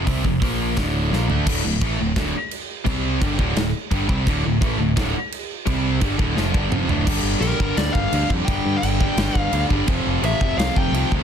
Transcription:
0.06 C2 C3 G3 C4, kick, open hi-hat
0.24 F1 F2 C3, kick
0.41 A#1 A#2 F3 A#3, kick, open hi-hat
0.77 D1 D2 A2 D3, kick, snare, open hi-hat
1.11 A#1 A#2 F3 A#3, snare
1.28 D2 D3 A3 D4, floor tom
1.46 D1 D2 A2 D3, kick, crash
1.64 D1 D2 A2
1.81 A1 A2 E3 A3, kick, crash
1.98 D1 D2 A2
2.16 D1 D2 A2 D3, kick, snare, crash
2.51 crash
2.85 C2 C3 G3 C4, kick, crash
3.22 G1 G2 D3 G3, kick, crash
3.38 D1 D2 A2 D3, kick
3.55 D1 D2 A2, snare, crash
3.91 G1 G2 D3 G3, kick, crash
4.08 C2 C3 G3 C4, kick
4.27 D1 D2 A2 D3, kick, crash
4.44 D1 D2 A2
4.61 A1 A2 E3 A3, kick, crash
4.78 D1 D2 A2
4.96 D2 A2 D3, kick, snare, crash
5.32 crash
5.66 C2 C3 G3 C4, kick, crash
6.01 G1 G2 D3 G3, kick, crash
6.18 D1 D2 A2 D3, kick
6.36 F1 F2 C3 F3, snare
6.53 G1 G2 D3 G3, kick
6.71 F1 F2 C3 F3, mid tom
6.88 D1 D2 A2 D3, floor tom
7.07 G1 G2 D3 G3, kick, crash
7.23 G1
7.41 A#1 G2 D3 G3 A#4, crash
7.59 G1 G2 D3 G3, kick
7.77 D2 G2 D3 G3 D5, snare, crash
7.92 G1 F5, kick
8.12 D2 G2 D3 G3, crash
8.29 F2 G2 D3 G3, kick
8.45 G1 G2 D3 G3 G5, kick, crash
8.65 G2
8.78 G5
8.82 G1 G2 D3 G3, crash
9.00 G2 D3 G3, kick
9.17 G1 G2 D3 G3, snare, crash
9.35 G1, kick
9.40 F5
9.52 D2 G2 D3 G3, crash
9.70 G1 G2 D3 G3, kick
9.87 F1 F2 C3 F3, kick, crash
10.07 F1
10.22 A1 F2 C3 F3 E5, crash
10.41 F1 F2 C3 F3, kick
10.58 C2 F2 C3 F3 F5, snare, crash
10.76 F1 G5, kick
10.92 C2 F2 C3 F3, crash
11.12 D2 F2 C3 F3, kick

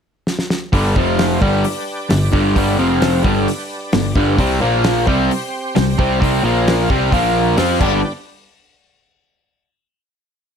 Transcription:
0.27 snare
0.39 snare
0.50 snare
0.73 G1 G2 D3 G3, kick, open hi-hat
0.96 F1 F2 C3 F3 C4 F4 C5 F5, kick
1.19 snare, open hi-hat
1.40 G1 G2 D3 G3 D4 G4 B4 D5, kick
1.64 open hi-hat
2.09 G1 G2 D3, snare, open hi-hat
2.32 G1 G2 D3 G3, kick
2.56 G1 G2 D3 G3, kick, open hi-hat
2.78 F1 F2 C3 F3 C4 F4 C5 F5
3.02 snare, open hi-hat
3.22 G1 G2 D3 G3 D4 G4 B4 D5, kick
3.48 open hi-hat
3.93 G1 G2 D3, snare, open hi-hat
4.16 G1 G2 D3 G3, kick
4.38 C2 C3 G3 C4, kick, open hi-hat
4.61 A#1 A#2 F3 A#3 F4 A#4 F5
4.84 snare, open hi-hat
5.02 C4 G4 C5 G5
5.07 C2 C3 G3 C4, kick
5.31 open hi-hat
5.75 C2 C3 G3, snare, open hi-hat
5.98 C2 C3 G3 C4, kick
6.21 C2 C3 G3 C4, kick, open hi-hat
6.43 A#1 A#2 F3 A#3 F4 A#4 F5
6.68 snare, open hi-hat
6.90 C2 C3 G3 C4, kick
7.12 A#1 A#2 F3 A#3 F4 A#4 F5, kick, open hi-hat
7.57 F2 F3 C4 F4 G5, snare, open hi-hat
7.61 G4 C5
7.80 G1 G2 D3 G3 B3 D4 G4 B4 D5, kick, crash

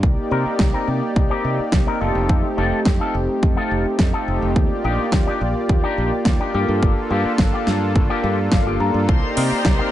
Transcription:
0.02 C2 A#3 D#4 G4 D5, kick
0.31 C3 C4 D#4 A#4
0.46 muted fingered electric bass stroke
0.59 C2, kick, snare
0.73 C4 D#4 A#4
0.88 C3
1.02 muted clean electric guitar stroke
1.16 C2, kick
1.30 C4 D#4 G4
1.44 C3
1.59 muted fingered electric bass stroke
1.72 C2, kick, snare
1.87 C4 D#4 A#4
2.00 F1 A3 C4 D#4 F4 G4 A4
2.15 F1
2.28 F2 A3 C4 D#4 G4, kick
2.57 F1 D#4 F4 A4
2.72 muted fingered electric bass stroke
2.85 F2, kick, snare
3.00 D#4 F4 A4
3.14 F1
3.28 muted clean electric guitar stroke
3.43 F2, kick
3.56 D#4 F4 A4
3.71 F1
3.85 muted fingered electric bass stroke
3.99 F2, kick, snare
4.13 D#4 F4 A4
4.27 F1 A3 C4 D#4 G4
4.42 F1
4.55 D#2 A#3 F4 G4 D5, kick
4.84 A#1 D4 D#4 G4
4.99 muted fingered electric bass stroke
5.12 D#2, kick, snare
5.27 D4 D#4 G4
5.41 A#1
5.55 muted clean electric guitar stroke
5.69 D#2, kick
5.83 D4 D#4 G4
5.98 A#1
6.12 muted fingered electric bass stroke
6.25 D#2, kick, snare
6.40 D4 D#4 G4
6.53 G2 A#3 D4 F4 G4 A4
6.69 G2
6.81 G1 A#3 D4 F4 A4, kick
7.10 G2 A#3 F4 G4
7.25 muted fingered electric bass stroke
7.38 G1, kick, snare
7.53 A#3 F4 G4
7.67 G2, snare
7.81 muted clean electric guitar stroke
7.96 G1, kick
8.09 A#3 F4 G4
8.24 G2
8.52 G1 F5, kick, snare
8.66 A#3 F4 G4
8.80 G2 A#3 D4 F4 A4 A#5
8.94 G2
9.08 C2 A#3 D#4 G4 C5 D5 A#5 C6, kick
9.36 C3 C4 D#4 A#4, open hi-hat
9.51 muted fingered electric bass stroke
9.65 C2, kick, snare
9.79 C4 D#4 A#4

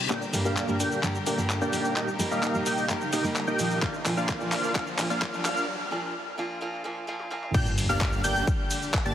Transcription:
Already playing: reverse cymbal
0.10 G1 D3 G3 A#3 D4 G4 A#4 D5 G5 G6, clap, riser, shaker
0.22 shaker
0.33 G2 G3 A#3 D4 G4, open hi-hat, shaker
0.45 G1 A#3 D4 G4 D5 F5 F6, shaker
0.57 clap, shaker
0.68 G2 G3 A#3 D4 G4, shaker
0.80 G1 A#3 D4 G4 D5 G5 G6, open hi-hat, shaker
0.92 shaker
1.02 G2 G3 A#3 D4 G4, clap, shaker
1.15 shaker
1.26 G1 A#3 D4 G4 D5 G5 G6, open hi-hat, shaker
1.37 G2 G3 A#3 D4 G4, shaker
1.50 clap, shaker
1.61 G1 A#3 D4 G4 D5 G5 G6, shaker
1.72 G3 A#3 D#4 G4, open hi-hat, shaker
1.85 shaker
1.96 D#1 D#3 A#3 D#4 G4 A#4 D#5 G5 G6, clap, shaker
2.08 shaker
2.19 G3 A#3 D#4 G4, open hi-hat, shaker
2.31 D#1 A#3 D#4 G4 D#5 F5 F6, shaker
2.43 clap, shaker
2.54 G3 A#3 D#4 G4, shaker
2.66 D#1 A#3 D#4 G4 D#5 G5 G6, open hi-hat, shaker
2.78 shaker
2.89 G3 A#3 D#4 G4, clap, shaker
3.01 shaker
3.13 A#3 D#4 G4 D#5 G5 G6, open hi-hat, shaker
3.23 G3 A#3 D#4 G4, shaker
3.36 clap, shaker
3.47 D#1 A#3 D#4 G4 D#5 G5 G6, shaker
3.58 A#2 F3 A#3 D4 F4, open hi-hat, shaker
3.71 shaker
3.82 A#1 D3 F3 A#3 D4 F4 D5 F5 F6, kick, clap, shaker
3.94 shaker
4.05 A#2 F3 A#3 D4 F4, clap, open hi-hat, shaker
4.17 A#1 A#3 D4 F4 D5 F5 F6, shaker
4.29 kick, clap, shaker
4.40 A#2 F3 A#3 D4 F4, shaker
4.52 A#1 A#3 D4 F4 D5 F5 F6, clap, open hi-hat, shaker
4.64 shaker
4.75 A#1 A#3 D4 F4 D5 F5, kick, clap, shaker
4.87 shaker
4.98 A#2 F3 A#3 D4 F4, clap, open hi-hat, shaker
5.10 A#1 A#3 D4 F4 D5 F5 F6, shaker
5.22 kick, clap, shaker
5.33 A#2 F3 A#3 D4 F4, shaker
5.45 A#1 A#3 D4 F4 D5 F5 F6, clap, open hi-hat, shaker
5.57 shaker
5.91 A#2 F3 A#3 D4 F4
6.38 A#2 F3 A#3 D4 F4
6.61 A#2 F3 A#3 D4 F4
6.84 A#2 F3 A#3 D4 F4
7.07 A#2 F3 A#3 D4 F4
7.20 high tom
7.30 A#2 F3 A#3 D4 F4, mid tom
7.43 mid tom
7.54 G1 A#2 D3 G3 A#3 D4 G4 D5 G5 G6, kick, crash, ride, sub drop, shaker
7.66 shaker
7.78 open hi-hat, ride, shaker
7.89 G1 A#3 D4 G4 D5 F5 F6, shaker
8.01 kick, clap, shaker
8.13 shaker
8.24 G1 A#3 D4 G4 D5 G5 G6, open hi-hat, ride, shaker
8.36 shaker
8.47 kick, ride, shaker
8.71 open hi-hat, ride, shaker
8.82 shaker
8.94 kick, clap, shaker
9.05 G1 A#3 D4 G4 D5 A5 A6, shaker

